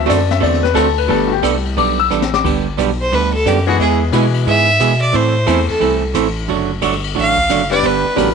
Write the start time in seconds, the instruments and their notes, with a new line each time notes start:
Already playing: upright piano E3 F#3 C4
0.06 analog synth bass F#2, hollow-body jazz guitar D3 A3 C4 F#4 A4, upright piano D5, kick, hi-hat pedal, ride
0.31 upright piano E5, snare
0.40 analog synth bass E2, hollow-body jazz guitar D3 A3 C4 F#4 A4, upright piano D5, kick, ride
0.54 snare
0.63 upright piano B4, snare
0.74 analog synth bass D2, hollow-body jazz guitar D3 A3 C4 F#4 A4, upright piano A4, kick, hi-hat pedal, ride
0.98 upright piano B4, ride
1.08 analog synth bass G1, hollow-body jazz guitar G3 B3 D4 A4, upright piano G3 A3 B3 A4, kick, ride
1.27 upright piano F#4
1.32 upright piano G4
1.42 analog synth bass C2, hollow-body jazz guitar G3 B3 D4 A4, kick, hi-hat pedal, ride
1.65 ride
1.77 analog synth bass B1, hollow-body jazz guitar G3 B3 D4 A4, upright piano D6, kick, ride
2.00 upright piano E6
2.10 analog synth bass A1, hollow-body jazz guitar G3 B3 D4 A4, hi-hat pedal
2.22 snare
2.34 upright piano D6, snare
2.44 analog synth bass G1, hollow-body jazz guitar D3 G3 B3 D4 G4, kick, crash
2.77 analog synth bass B1, hollow-body jazz guitar D3 G3 B3 D4 G4, kick, hi-hat pedal, ride
3.01 fiddle C5
3.12 analog synth bass D2, hollow-body jazz guitar D3 G3 B3 D4 G4, fiddle B4, kick, ride
3.33 fiddle A4
3.45 analog synth bass F#2, hollow-body jazz guitar D3 G3 B3 D4 G4, fiddle G4, kick, hi-hat pedal, ride
3.67 upright piano E3 G#3 B3 E4 G#4, fiddle F#4, ride
3.79 analog synth bass E2, hollow-body jazz guitar E3 G#3 B3 E4 G#4, fiddle G#4, kick, ride
4.12 analog synth bass B2, upright piano E3 G#3 B3 E4 G#4, hollow-body jazz guitar E3 G#3 B3 E4 G#4, kick, hi-hat pedal, ride
4.34 ride
4.46 analog synth bass G#2, hollow-body jazz guitar E3 G#3 B3 E4 G#4, fiddle E5, kick
4.80 analog synth bass B2, hollow-body jazz guitar E3 G#3 B3 E4 G#4, kick, hi-hat pedal, ride
5.01 fiddle D5
5.12 analog synth bass A2, hollow-body jazz guitar E3 A3 C4 E4 A4, fiddle C5, kick, ride
5.46 analog synth bass E2, hollow-body jazz guitar E3 A3 C4 E4 A4, upright piano E3 A3 C4 E4 A4, kick, hi-hat pedal, ride
5.68 analog synth bass E2, fiddle A4, ride
5.80 analog synth bass C2, hollow-body jazz guitar E3 A3 C4 E4 A4, kick, ride
6.14 analog synth bass A1, hollow-body jazz guitar E3 A3 C4 E4 A4, kick, hi-hat pedal, ride
6.36 ride
6.48 analog synth bass F#1, hollow-body jazz guitar D3 F#3 A3 D4 F#4, kick, ride
6.81 analog synth bass G1, hollow-body jazz guitar D3 F#3 A3 D4 F#4, kick, hi-hat pedal, ride
7.04 ride
7.15 analog synth bass A1, hollow-body jazz guitar D3 F#3 A3 D4 F#4, kick
7.19 fiddle F5
7.37 kick
7.49 analog synth bass F#1, hollow-body jazz guitar D3 F#3 A3 D4 F#4, kick, hi-hat pedal, ride
7.70 upright piano G3 B3 D4 G4 B4, fiddle D5, ride
7.83 analog synth bass G1, hollow-body jazz guitar D3 G3 B3 D4 G4, fiddle B4, kick, ride
8.04 analog synth bass G1
8.16 analog synth bass A1, hollow-body jazz guitar D3 G3 B3 D4 G4, upright piano F#3 A#3 C#4 F#4 A#4, kick, hi-hat pedal, ride